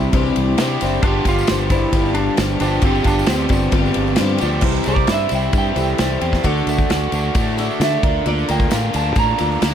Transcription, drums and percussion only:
0.13 kick loud
0.13 ride loud
0.13 tambourine soft
0.26 tambourine soft
0.36 ride medium
0.58 snare loud
0.58 ride loud
0.58 tambourine medium
0.81 ride medium
0.81 tambourine medium
0.94 tambourine soft
1.03 kick loud
1.03 ride loud
1.25 kick medium
1.25 ride medium
1.25 tambourine medium
1.38 tambourine medium
1.47 snare loud
1.47 ride loud
1.47 tambourine medium
1.61 tambourine soft
1.70 kick medium
1.70 ride medium
1.70 tambourine medium
1.93 kick loud
1.93 ride loud
1.93 tambourine soft
2.06 tambourine soft
2.15 ride medium
2.37 snare loud
2.37 ride loud
2.37 tambourine medium
2.51 tambourine soft
2.60 ride medium
2.60 tambourine medium
2.82 kick loud
2.82 ride loud
2.82 tambourine soft
2.95 tambourine soft
3.04 kick medium
3.04 ride medium
3.04 tambourine medium
3.19 tambourine medium
3.26 snare loud
3.26 ride loud
3.26 tambourine loud
3.41 tambourine soft
3.49 kick medium
3.49 ride medium
3.49 tambourine medium
3.63 tambourine soft
3.72 kick loud
3.72 ride loud
3.72 tambourine soft
3.86 tambourine soft
3.94 ride medium
4.08 tambourine soft
4.16 snare loud
4.16 ride loud
4.16 tambourine loud
4.38 ride medium
4.38 tambourine medium
4.61 kick loud
4.61 crash loud
4.61 tambourine soft
4.74 tambourine soft
4.84 ride medium
4.84 tambourine medium
4.96 kick medium
5.07 snare loud
5.07 ride loud
5.07 tambourine medium
5.20 tambourine soft
5.29 ride medium
5.29 tambourine medium
5.43 tambourine soft
5.53 kick loud
5.53 ride loud
5.53 tambourine medium
5.66 tambourine soft
5.76 ride medium
5.76 tambourine medium
5.90 tambourine soft
5.98 snare loud
5.98 ride loud
5.98 tambourine medium
6.21 ride medium
6.33 kick medium
6.33 snare soft
6.33 tambourine soft
6.44 kick loud
6.44 ride loud
6.44 tambourine soft
6.58 tambourine soft
6.67 ride medium
6.67 tambourine medium
6.78 kick medium
6.90 snare loud
6.90 ride loud
6.90 tambourine medium
7.12 ride medium
7.12 tambourine medium
7.25 tambourine soft
7.35 kick loud
7.35 ride loud
7.35 tambourine medium
7.48 tambourine soft
7.58 ride medium
7.58 tambourine medium
7.71 tambourine soft
7.81 snare loud
7.81 ride loud
7.81 tambourine medium
7.93 tambourine soft
8.03 kick loud
8.03 ride medium
8.26 ride loud
8.26 tambourine soft
8.38 tambourine soft
8.49 ride medium
8.49 tambourine medium
8.60 kick medium
8.60 tambourine soft
8.71 snare loud
8.71 ride loud
8.71 tambourine loud
8.83 tambourine soft
8.94 ride medium
8.94 tambourine medium
9.04 tambourine soft
9.16 kick loud
9.16 ride loud
9.16 tambourine medium
9.28 tambourine soft
9.38 ride medium
9.38 tambourine medium
9.52 tambourine soft
9.62 snare loud
9.62 ride loud
9.62 tambourine medium

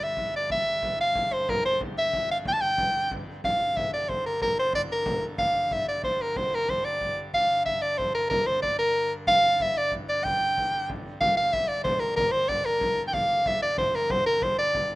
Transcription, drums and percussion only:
0.01 frame drum soft
0.17 frame drum medium
0.34 frame drum soft
0.50 frame drum medium
0.82 frame drum medium
0.99 frame drum soft
1.15 frame drum medium
1.32 frame drum soft
1.49 frame drum medium
1.81 frame drum medium
1.97 frame drum soft
2.13 frame drum medium
2.30 frame drum soft
2.45 frame drum medium
2.62 frame drum soft
2.78 frame drum medium
3.11 frame drum medium
3.27 frame drum soft
3.44 frame drum medium
3.61 frame drum soft
3.77 frame drum medium
4.09 frame drum medium
4.26 frame drum soft
4.42 frame drum medium
4.58 frame drum soft
4.73 frame drum medium
5.06 frame drum medium
5.22 frame drum soft
5.38 frame drum medium
5.55 frame drum soft
5.71 frame drum medium
6.03 frame drum medium
6.20 frame drum soft
6.36 frame drum medium
6.69 frame drum medium
7.01 frame drum medium
7.33 frame drum medium
7.50 frame drum soft
7.66 frame drum medium
7.99 frame drum medium
8.15 frame drum soft
8.31 frame drum medium
8.48 frame drum soft
8.63 frame drum medium
9.12 frame drum soft
9.27 frame drum medium
9.43 frame drum soft
9.60 frame drum medium
9.92 frame drum medium
10.09 frame drum soft
10.25 frame drum medium
10.58 frame drum medium
10.74 frame drum soft
10.90 frame drum medium
11.21 frame drum medium
11.38 frame drum soft
11.53 frame drum medium
11.85 frame drum medium
12.01 frame drum soft
12.17 frame drum medium
12.34 frame drum soft
12.49 frame drum medium
12.81 frame drum medium
12.98 frame drum soft
13.13 frame drum medium
13.30 frame drum soft
13.46 frame drum medium
13.78 frame drum medium
13.94 frame drum soft
14.10 frame drum medium
14.42 frame drum medium
14.75 frame drum medium
14.91 frame drum soft

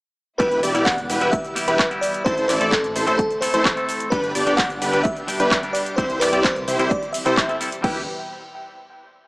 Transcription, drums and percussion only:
0.40 kick loud
0.40 closed hi-hat medium
0.40 cabasa soft
0.51 closed hi-hat soft
0.51 cabasa soft
0.63 open hi-hat loud
0.63 cabasa medium
0.75 closed hi-hat medium
0.75 cabasa soft
0.86 kick loud
0.86 clap loud
0.86 closed hi-hat medium
0.86 cabasa soft
0.98 closed hi-hat soft
0.98 cabasa soft
1.10 open hi-hat medium
1.10 cabasa medium
1.21 closed hi-hat medium
1.21 cabasa soft
1.33 kick loud
1.33 closed hi-hat medium
1.33 cabasa soft
1.45 closed hi-hat soft
1.45 cabasa soft
1.56 open hi-hat loud
1.56 cabasa medium
1.68 closed hi-hat medium
1.68 cabasa soft
1.79 kick loud
1.79 clap loud
1.79 closed hi-hat medium
1.79 cabasa soft
1.79 high woodblock medium
1.91 closed hi-hat soft
1.91 cabasa soft
2.03 open hi-hat loud
2.03 cabasa medium
2.14 closed hi-hat medium
2.14 cabasa soft
2.26 kick loud
2.26 closed hi-hat medium
2.26 cabasa soft
2.38 closed hi-hat soft
2.38 cabasa soft
2.49 clap medium
2.49 open hi-hat loud
2.49 cabasa medium
2.61 closed hi-hat medium
2.61 cabasa soft
2.72 kick loud
2.72 clap loud
2.72 closed hi-hat medium
2.72 cabasa soft
2.84 closed hi-hat soft
2.84 cabasa soft
2.96 open hi-hat medium
2.96 cabasa medium
3.07 closed hi-hat medium
3.07 cabasa soft
3.19 kick loud
3.19 closed hi-hat medium
3.19 cabasa soft
3.31 closed hi-hat soft
3.31 cabasa soft
3.42 open hi-hat loud
3.42 cabasa medium
3.54 closed hi-hat medium
3.54 cabasa soft
3.65 kick loud
3.65 clap loud
3.65 closed hi-hat soft
3.65 cabasa soft
3.65 high woodblock medium
3.77 closed hi-hat soft
3.77 cabasa soft
3.89 open hi-hat loud
3.89 cabasa medium
4.00 closed hi-hat medium
4.00 cabasa soft
4.12 kick loud
4.12 closed hi-hat soft
4.12 cabasa soft
4.24 closed hi-hat soft
4.24 cabasa soft
4.35 open hi-hat loud
4.35 cabasa medium
4.47 closed hi-hat medium
4.47 cabasa soft
4.58 kick loud
4.58 clap loud
4.58 closed hi-hat medium
4.58 cabasa soft
4.70 closed hi-hat soft
4.70 cabasa soft
4.82 open hi-hat loud
4.82 cabasa medium
4.93 closed hi-hat medium
4.93 cabasa soft
5.05 kick loud
5.05 closed hi-hat medium
5.05 cabasa soft
5.17 closed hi-hat soft
5.17 cabasa soft
5.28 open hi-hat loud
5.28 cabasa medium
5.40 closed hi-hat soft
5.40 cabasa soft
5.51 kick loud
5.51 clap loud
5.51 closed hi-hat medium
5.51 cabasa soft
5.51 high woodblock medium
5.63 closed hi-hat soft
5.63 cabasa soft
5.75 open hi-hat loud
5.75 cabasa medium
5.86 closed hi-hat medium
5.86 cabasa soft
5.98 kick loud
5.98 closed hi-hat soft
5.98 cabasa soft
6.10 closed hi-hat soft
6.10 cabasa soft
6.21 clap medium
6.21 open hi-hat loud
6.21 cabasa medium
6.33 closed hi-hat medium
6.33 cabasa soft
6.44 kick loud
6.44 clap loud
6.44 closed hi-hat medium
6.44 cabasa soft
6.56 closed hi-hat soft
6.56 cabasa soft
6.68 open hi-hat medium
6.68 cabasa medium
6.79 closed hi-hat soft
6.79 cabasa soft
6.91 kick loud
6.91 closed hi-hat medium
6.91 cabasa soft
7.03 closed hi-hat soft
7.03 cabasa soft
7.14 open hi-hat loud
7.14 cabasa medium
7.26 closed hi-hat medium
7.26 cabasa soft
7.37 kick loud
7.37 clap loud
7.37 closed hi-hat medium
7.37 cabasa soft
7.37 high woodblock medium
7.49 closed hi-hat soft
7.49 cabasa soft
7.61 open hi-hat medium
7.61 cabasa medium
7.72 closed hi-hat soft
7.72 cabasa soft
7.84 kick loud
7.84 crash medium

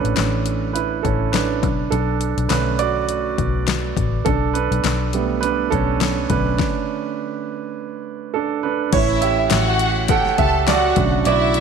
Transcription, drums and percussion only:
0.05 closed hi-hat soft
0.16 snare loud
0.16 clap medium
0.16 closed hi-hat medium
0.46 closed hi-hat medium
0.76 closed hi-hat medium
1.05 kick medium
1.05 closed hi-hat medium
1.34 snare medium
1.34 clap medium
1.34 closed hi-hat medium
1.63 kick medium
1.63 closed hi-hat medium
1.92 closed hi-hat medium
2.21 closed hi-hat medium
2.38 closed hi-hat soft
2.50 snare loud
2.50 clap medium
2.50 closed hi-hat medium
2.79 closed hi-hat medium
3.09 closed hi-hat medium
3.38 kick medium
3.38 closed hi-hat medium
3.68 snare medium
3.68 clap medium
3.68 closed hi-hat medium
3.97 kick medium
3.97 closed hi-hat medium
4.26 kick loud
4.26 closed hi-hat medium
4.55 closed hi-hat medium
4.72 closed hi-hat soft
4.84 snare loud
4.84 clap medium
4.84 closed hi-hat medium
5.13 closed hi-hat medium
5.43 closed hi-hat medium
5.72 kick medium
5.72 closed hi-hat medium
6.01 snare loud
6.01 clap medium
6.01 closed hi-hat medium
6.30 kick medium
6.30 closed hi-hat medium
6.59 kick loud
6.59 snare medium
8.93 kick loud
8.93 closed hi-hat medium
8.93 crash loud
9.22 closed hi-hat medium
9.50 snare loud
9.50 clap medium
9.50 closed hi-hat medium
9.79 closed hi-hat medium
10.08 kick loud
10.08 closed hi-hat medium
10.25 snare soft
10.38 kick medium
10.38 closed hi-hat medium
10.67 snare loud
10.67 clap medium
10.67 closed hi-hat medium
10.96 kick loud
10.96 closed hi-hat medium
11.25 closed hi-hat medium
11.54 closed hi-hat medium

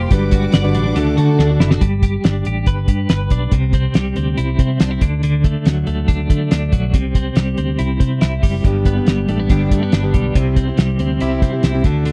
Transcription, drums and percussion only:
0.11 kick loud
0.11 closed hi-hat medium
0.31 kick medium
0.31 closed hi-hat medium
0.52 snare loud
0.52 closed hi-hat medium
0.74 closed hi-hat medium
0.96 closed hi-hat medium
1.18 closed hi-hat medium
1.39 snare medium
1.60 snare medium
1.71 snare medium
1.81 kick medium
1.81 closed hi-hat medium
2.02 kick medium
2.02 closed hi-hat medium
2.24 snare loud
2.24 closed hi-hat medium
2.45 closed hi-hat medium
2.66 kick medium
2.66 closed hi-hat medium
2.88 kick medium
2.88 closed hi-hat medium
3.09 snare medium
3.09 closed hi-hat medium
3.30 kick medium
3.30 closed hi-hat medium
3.52 kick medium
3.52 closed hi-hat medium
3.73 kick medium
3.73 closed hi-hat medium
3.94 snare loud
3.94 closed hi-hat medium
4.16 closed hi-hat medium
4.38 closed hi-hat medium
4.59 kick medium
4.59 closed hi-hat medium
4.80 snare medium
4.80 closed hi-hat medium
5.01 kick medium
5.01 closed hi-hat medium
5.23 closed hi-hat medium
5.44 kick medium
5.44 closed hi-hat medium
5.65 snare medium
5.65 closed hi-hat medium
5.87 closed hi-hat medium
6.08 kick medium
6.08 closed hi-hat medium
6.30 kick medium
6.30 closed hi-hat medium
6.51 snare medium
6.51 closed hi-hat medium
6.72 kick medium
6.72 closed hi-hat medium
6.94 kick medium
6.94 closed hi-hat medium
7.15 kick medium
7.15 closed hi-hat medium
7.36 snare loud
7.36 closed hi-hat medium
7.58 closed hi-hat medium
7.79 closed hi-hat medium
8.00 kick medium
8.00 closed hi-hat medium
8.21 snare medium
8.21 closed hi-hat medium
8.43 kick medium
8.43 open hi-hat medium
8.64 kick loud
8.64 closed hi-hat medium
8.85 kick medium
8.85 closed hi-hat medium
9.07 snare loud
9.07 closed hi-hat medium
9.28 closed hi-hat medium
9.49 kick medium
9.49 closed hi-hat medium
9.71 kick medium
9.71 closed hi-hat medium
9.92 snare medium
9.92 closed hi-hat medium
10.14 kick medium
10.14 closed hi-hat medium
10.35 kick medium
10.35 closed hi-hat medium
10.56 kick medium
10.56 closed hi-hat medium
10.77 snare loud
10.77 closed hi-hat medium
10.99 closed hi-hat medium
11.20 closed hi-hat medium
11.42 kick medium
11.42 closed hi-hat medium
11.63 snare medium
11.63 closed hi-hat medium
11.84 kick loud
11.84 closed hi-hat medium
12.06 closed hi-hat medium

